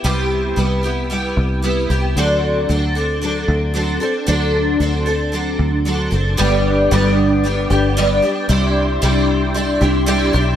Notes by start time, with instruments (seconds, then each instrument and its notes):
0.04 fingered electric bass C2, twelve-string acoustic guitar C3 G3 B3 E4 G4
0.56 fingered electric bass C2, twelve-string acoustic guitar G3 B3 E4 G4
0.83 twelve-string acoustic guitar B3 E4 G4
1.10 twelve-string acoustic guitar G3 B3 E4 G4
1.37 fingered electric bass C2
1.62 twelve-string acoustic guitar G3 B3 E4 G4
1.90 fingered electric bass C2, twelve-string acoustic guitar B3 E4 G4
2.16 fingered electric bass D2, twelve-string acoustic guitar D3 F#3 C4 D4 A4
2.69 fingered electric bass D2, twelve-string acoustic guitar F#3 C4 D4 A4
2.95 twelve-string acoustic guitar C4 D4 A4
3.22 twelve-string acoustic guitar F#3 C4 D4 A4
3.48 fingered electric bass D2
3.74 twelve-string acoustic guitar F#3 C4 D4 A4
4.00 twelve-string acoustic guitar C4 D4 A4
4.27 fingered electric bass D2, twelve-string acoustic guitar D3 F#3 C4 D4 A4
4.80 fingered electric bass D2, twelve-string acoustic guitar F#3 C4 D4 A4
5.06 twelve-string acoustic guitar C4 D4 A4
5.32 twelve-string acoustic guitar F#3 C4 D4 A4
5.59 fingered electric bass D2
5.85 twelve-string acoustic guitar F#3 C4 D4 A4
6.11 fingered electric bass F#1, twelve-string acoustic guitar C4 D4 A4
6.37 fingered electric bass G1, twelve-string acoustic guitar G2 D3 G3 B3 D4 G4, tonewheel organ B4 D5 G5 D6
6.91 fingered electric bass G1, twelve-string acoustic guitar G2 D3 G3 B3 D4 G4
7.44 twelve-string acoustic guitar G3 B3 D4 G4
7.70 fingered electric bass G1, twelve-string acoustic guitar G3 B3 D4 G4
7.97 twelve-string acoustic guitar G2 D3 G3 B3 D4 G4
8.22 twelve-string acoustic guitar G3 B3 D4 G4
8.49 fingered electric bass C2, twelve-string acoustic guitar C3 G3 D4 E4 G4, tonewheel organ G4 E5 C6
9.02 fingered electric bass C2, twelve-string acoustic guitar C3 G3 D4 E4 G4
9.54 twelve-string acoustic guitar G3 D4 E4 G4
9.81 fingered electric bass C2, twelve-string acoustic guitar D4 E4 G4
10.06 twelve-string acoustic guitar C3 G3 D4 E4 G4
10.33 fingered electric bass B1, twelve-string acoustic guitar D4 E4 G4